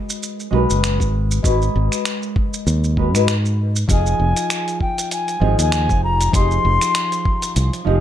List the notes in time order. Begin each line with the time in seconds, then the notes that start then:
Already playing: G#3 F#4 A#4 B4
0.10 shaker
0.23 shaker
0.40 shaker
0.51 B1 G#3 F#4 A#4 B4
0.70 F#1, shaker
0.84 finger snap, shaker
1.00 G#1, kick, shaker
1.31 shaker
1.42 G#1 G#3 F#4 A#4 B4, kick, shaker
1.62 shaker
1.76 G#1
1.92 finger snap, shaker
2.05 finger snap, shaker
2.23 shaker
2.36 kick
2.54 shaker
2.67 D#2, shaker
2.84 shaker
2.97 G#3 F#4 A#4 B4, kick
3.14 G#2 G#3 F#4 A#4 B4, finger snap, shaker
3.28 finger snap, shaker
3.45 shaker
3.76 shaker
3.87 F1 F3 D#4 F4 G#4, kick, closed hi-hat, shaker
3.92 G#5
4.06 shaker
4.20 F1
4.37 closed hi-hat, shaker
4.50 finger snap, closed hi-hat, shaker
4.68 closed hi-hat, shaker
4.81 G5, kick
4.98 closed hi-hat, shaker
5.11 G#5, closed hi-hat, shaker
5.28 closed hi-hat, shaker
5.40 G#1 F3 D#4 F4 G#4
5.59 D#2 G#5, closed hi-hat, shaker
5.72 finger snap, closed hi-hat, shaker
5.89 F1, kick, shaker
6.04 A#5
6.21 closed hi-hat, shaker
6.32 F1 F3 D#4 G4 G#4 C6, kick, closed hi-hat, shaker
6.51 shaker
6.65 F1
6.81 finger snap, closed hi-hat, shaker
6.95 finger snap, closed hi-hat, shaker
7.12 closed hi-hat, shaker
7.25 kick
7.42 closed hi-hat, shaker
7.56 C2, closed hi-hat, shaker
7.73 closed hi-hat, shaker
7.85 F1 F3 D#4 G4 G#4